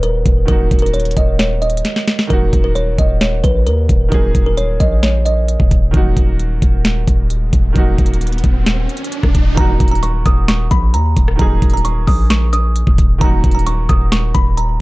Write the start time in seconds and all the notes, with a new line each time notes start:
Already playing: D#1 D#3 F#3 A#3 D#4 F#4
0.03 A#4, closed hi-hat
0.26 D#1, kick, closed hi-hat
0.46 D#1 D#3 F#3 A#3 A#4, kick, closed hi-hat
0.50 D#4 F#4
0.71 D#1, kick, closed hi-hat
0.79 A#4, closed hi-hat
0.86 closed hi-hat
0.94 C#5, closed hi-hat
1.00 closed hi-hat
1.05 closed hi-hat
1.11 closed hi-hat
1.17 D#1 D#5, kick, closed hi-hat
1.39 C#5, snare, closed hi-hat
1.62 D#5, closed hi-hat
1.70 closed hi-hat
1.77 closed hi-hat
1.85 snare, closed hi-hat
1.96 snare
2.08 snare, closed hi-hat
2.19 snare
2.27 D#1 D#3 F#3 A#3 A#4, kick, closed hi-hat
2.32 D#4 F#4
2.53 D#1, kick, closed hi-hat
2.64 A#4
2.75 C#5, closed hi-hat
2.98 D#1 D#5, kick, closed hi-hat
3.21 C#5, snare, closed hi-hat
3.44 A#1 B4, kick, closed hi-hat
3.67 D#2 A#4, closed hi-hat
3.89 D#1, kick, closed hi-hat
4.09 D#1 D#3 F#3 A#3 A#4, kick, closed hi-hat
4.13 D#4 G#4
4.35 D#1, kick, closed hi-hat
4.46 A#4
4.58 C#5, closed hi-hat
4.80 A#1 D#5, kick, closed hi-hat
5.03 C#5, snare, closed hi-hat
5.25 D#5, closed hi-hat
5.48 closed hi-hat
5.60 D#1, kick
5.71 kick, closed hi-hat
5.91 D#1 D#3 F#3 A#3, kick, closed hi-hat, riser
5.95 D#4 F#4
6.17 D#1, kick, closed hi-hat
6.39 closed hi-hat
6.62 D#1, kick, closed hi-hat
6.85 snare, closed hi-hat
7.07 D#1, kick, closed hi-hat
7.30 closed hi-hat
7.53 D#1, kick, closed hi-hat
7.73 D#1 D#3 F#3 A#3, kick, closed hi-hat
7.77 D#4 F#4
7.98 D#1, kick, closed hi-hat
8.06 closed hi-hat
8.13 closed hi-hat
8.21 closed hi-hat
8.27 closed hi-hat
8.32 closed hi-hat
8.38 closed hi-hat
8.44 D#1, kick, closed hi-hat
8.66 snare, closed hi-hat
8.89 closed hi-hat
8.97 closed hi-hat
9.04 closed hi-hat
9.12 closed hi-hat
9.23 D#1, kick, cross-stick
9.35 kick, closed hi-hat
9.55 D#1 D#3 F#3 A#3 A#5, kick, closed hi-hat
9.59 D#4 F#4
9.80 D#1, kick, closed hi-hat
9.88 A#5, closed hi-hat
9.95 closed hi-hat
10.03 C#6, closed hi-hat
10.26 D#1 D#6, kick, cross-stick, closed hi-hat
10.48 C#6, snare, closed hi-hat
10.71 A#1 B5, kick, closed hi-hat
10.94 D#2 A#5, closed hi-hat
11.17 D#1, kick, closed hi-hat
11.28 cross-stick
11.36 D#1 D#3 F#3 A#3 A#5, kick, closed hi-hat
11.40 D#4 G#4
11.62 D#1, kick, closed hi-hat
11.70 A#5, closed hi-hat
11.77 closed hi-hat
11.85 C#6, closed hi-hat
12.07 A#1 D#6, kick, open hi-hat
12.30 C#6, snare, closed hi-hat
12.53 D#6, closed hi-hat
12.76 closed hi-hat
12.87 D#1, kick
12.98 kick, closed hi-hat
13.18 D#1 D#3 F#3 A#3 A#5, kick, closed hi-hat
13.23 D#4 F#4
13.44 D#1, kick, closed hi-hat
13.51 A#5, closed hi-hat
13.59 closed hi-hat
13.67 C#6, closed hi-hat
13.89 D#1 D#6, kick, cross-stick, closed hi-hat
14.12 C#6, snare, closed hi-hat
14.35 D#1 B5, kick, closed hi-hat
14.57 A#5, closed hi-hat